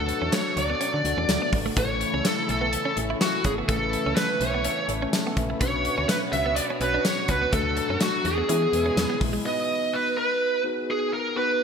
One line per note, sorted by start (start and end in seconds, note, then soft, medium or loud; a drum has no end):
0.00 0.13 D2 loud
0.00 1.73 B2 medium
0.00 1.75 F#3 medium
0.00 0.44 A3 medium
0.00 1.74 A3 medium
0.00 0.44 D4 medium
0.00 0.44 F#4 medium
0.00 1.73 F#4 medium
0.00 0.34 A4 medium
0.00 0.44 A4 medium
0.08 muted clean electric guitar stroke soft
0.08 closed hi-hat medium
0.22 0.30 E2 medium
0.22 0.28 C#4 medium
0.32 0.40 A3 medium
0.32 0.58 C#5 medium
0.32 snare loud
0.32 closed hi-hat medium
0.32 tambourine medium
0.57 0.75 D2 medium
0.57 1.50 D5 medium
0.57 muted clean electric guitar stroke soft
0.57 closed hi-hat medium
0.70 0.76 B3 medium
0.81 0.89 C#4 medium
0.81 closed hi-hat medium
0.94 1.02 D3 medium
0.94 muted clean electric guitar stroke soft
1.04 1.15 D2 loud
1.04 1.48 A3 medium
1.04 1.49 D4 medium
1.04 1.49 F#4 medium
1.04 1.49 A4 medium
1.04 closed hi-hat medium
1.17 1.26 E2 medium
1.17 1.24 C#4 medium
1.28 1.39 D2 medium
1.28 snare loud
1.28 closed hi-hat medium
1.28 tambourine medium
1.42 1.48 B3 medium
1.52 1.71 G#1 medium
1.52 muted clean electric guitar stroke soft
1.52 kick medium
1.52 open hi-hat medium
1.66 1.72 A3 medium
1.76 2.05 A1 loud
1.76 5.57 C#3 medium
1.76 5.57 E3 medium
1.76 2.35 A3 medium
1.76 3.67 A3 medium
1.76 1.85 A3 medium
1.76 2.35 C#4 medium
1.76 5.57 E4 medium
1.76 2.35 E4 medium
1.76 2.36 A4 medium
1.76 2.27 C#5 loud
1.76 kick loud
1.76 closed hi-hat medium
2.01 muted clean electric guitar stroke soft
2.01 closed hi-hat medium
2.14 2.22 C#2 medium
2.14 2.20 C#4 medium
2.24 2.32 A3 medium
2.24 2.50 A4 medium
2.24 snare loud
2.24 closed hi-hat loud
2.24 tambourine medium
2.48 2.77 B1 medium
2.48 2.95 A4 medium
2.48 muted clean electric guitar stroke soft
2.48 closed hi-hat medium
2.61 2.68 B3 medium
2.73 closed hi-hat loud
2.85 2.92 C#4 medium
2.97 3.15 A1 medium
2.97 3.41 A3 medium
2.97 3.41 C#4 medium
2.97 3.41 E4 medium
2.97 3.41 A4 medium
2.97 muted clean electric guitar stroke soft
2.97 closed hi-hat medium
3.10 3.17 E4 medium
3.21 3.44 F#4 medium
3.21 muted clean electric guitar stroke soft
3.21 snare loud
3.21 closed hi-hat medium
3.21 tambourine medium
3.44 3.63 G#1 medium
3.44 3.53 C#4 medium
3.44 3.52 G#4 medium
3.44 kick medium
3.44 closed hi-hat medium
3.58 3.65 B3 medium
3.68 3.97 A1 loud
3.68 4.27 A3 medium
3.68 5.59 A3 medium
3.68 3.77 A3 medium
3.68 4.27 C#4 medium
3.68 4.27 E4 medium
3.68 4.15 A4 medium
3.68 4.28 B4 medium
3.68 kick loud
3.68 closed hi-hat medium
3.93 muted clean electric guitar stroke soft
3.93 closed hi-hat medium
4.06 4.14 C#2 medium
4.06 4.13 C#4 medium
4.16 4.25 A3 medium
4.16 4.41 B4 loud
4.16 snare loud
4.16 closed hi-hat medium
4.16 tambourine medium
4.40 4.68 B1 loud
4.40 4.85 C#5 loud
4.40 muted clean electric guitar stroke soft
4.40 closed hi-hat medium
4.54 4.61 B3 medium
4.64 4.73 C#4 medium
4.64 closed hi-hat loud
4.79 muted clean electric guitar stroke soft
4.88 5.07 A1 medium
4.88 5.32 A3 medium
4.88 5.32 C#4 medium
4.88 5.33 E4 medium
4.88 5.33 A4 medium
4.88 closed hi-hat medium
5.02 5.09 C#4 medium
5.13 5.36 E5 medium
5.13 5.36 A5 medium
5.13 snare loud
5.13 closed hi-hat medium
5.13 tambourine medium
5.27 5.33 B3 medium
5.37 5.55 A#1 medium
5.37 5.60 B4 medium
5.37 5.83 E5 medium
5.37 muted clean electric guitar stroke soft
5.37 kick medium
5.37 closed hi-hat medium
5.50 5.56 A3 medium
5.59 5.89 B1 loud
5.59 8.45 B2 medium
5.59 7.51 B3 medium
5.59 5.69 B3 medium
5.59 6.19 C#4 medium
5.59 6.19 D4 medium
5.59 7.51 F#4 medium
5.59 6.19 F#4 medium
5.59 6.20 B4 medium
5.59 7.50 C#5 medium
5.59 6.06 C#5 loud
5.59 kick loud
5.59 closed hi-hat medium
5.85 muted clean electric guitar stroke soft
5.85 closed hi-hat medium
5.98 6.06 D2 loud
5.98 6.04 C#4 medium
6.08 6.16 A3 medium
6.08 6.16 B4 medium
6.08 snare loud
6.08 closed hi-hat loud
6.08 tambourine medium
6.33 6.61 C#2 medium
6.33 6.55 E5 loud
6.33 muted clean electric guitar stroke soft
6.33 closed hi-hat medium
6.46 6.52 B3 medium
6.56 6.62 D5 loud
6.56 closed hi-hat loud
6.70 6.77 C#4 medium
6.80 6.99 B1 loud
6.80 7.25 C#4 medium
6.80 7.25 D4 medium
6.80 7.25 F#4 medium
6.80 7.04 B4 medium
6.80 7.25 C#5 medium
6.80 muted clean electric guitar stroke soft
6.80 closed hi-hat medium
6.94 7.01 D4 medium
7.05 7.30 C#5 loud
7.05 muted clean electric guitar stroke soft
7.05 snare loud
7.05 closed hi-hat medium
7.05 tambourine medium
7.28 7.47 C#2 medium
7.28 7.37 C#4 medium
7.28 7.54 B4 loud
7.28 kick medium
7.28 closed hi-hat medium
7.42 7.48 B3 medium
7.52 7.81 D2 loud
7.52 8.48 F#3 medium
7.52 8.11 A3 medium
7.52 7.61 A3 medium
7.52 8.48 A3 medium
7.52 8.11 D4 medium
7.52 8.12 F#4 medium
7.52 8.48 F#4 medium
7.52 8.12 A4 medium
7.52 7.98 A4 medium
7.52 kick loud
7.52 closed hi-hat medium
7.77 muted clean electric guitar stroke soft
7.77 closed hi-hat medium
7.89 7.98 F#2 medium
7.89 7.97 C#4 medium
8.00 8.09 A3 medium
8.00 8.26 F#4 medium
8.00 snare loud
8.00 closed hi-hat medium
8.00 tambourine medium
8.25 8.43 E2 medium
8.25 9.17 G#4 medium
8.25 muted clean electric guitar stroke soft
8.25 closed hi-hat medium
8.38 8.44 B3 medium
8.48 9.44 B2 medium
8.48 9.44 E3 medium
8.48 8.67 E3 loud
8.48 8.68 G#3 medium
8.48 9.44 G#3 medium
8.48 8.69 B3 medium
8.48 8.57 C#4 medium
8.48 9.44 E4 medium
8.48 8.69 E4 medium
8.48 8.69 G#4 medium
8.48 closed hi-hat medium
8.62 muted clean electric guitar stroke soft
8.73 8.91 E2 medium
8.73 9.17 G#3 medium
8.73 9.17 B3 medium
8.73 9.17 E4 medium
8.73 9.17 B4 medium
8.73 closed hi-hat medium
8.86 8.92 C#4 medium
8.97 9.07 E2 medium
8.97 snare loud
8.97 closed hi-hat medium
8.97 tambourine medium
9.10 9.16 B3 medium
9.21 9.39 A#1 medium
9.21 muted clean electric guitar stroke soft
9.21 kick medium
9.21 open hi-hat medium
9.33 9.40 G#3 medium
9.45 10.03 B3 medium
9.45 10.04 D#4 medium
9.45 10.04 F#4 medium
9.45 10.04 B4 medium
9.45 9.95 D#5 loud
9.93 10.16 B4 medium
10.17 10.62 B4 medium
10.64 11.08 B3 medium
10.64 11.09 D#4 medium
10.64 11.09 F#4 medium
10.64 11.09 G#4 medium
10.91 11.13 G#4 medium
11.13 11.37 A#4 medium
11.37 11.63 B3 medium
11.37 11.63 D#4 medium
11.37 11.63 F#4 medium
11.37 11.63 B4 medium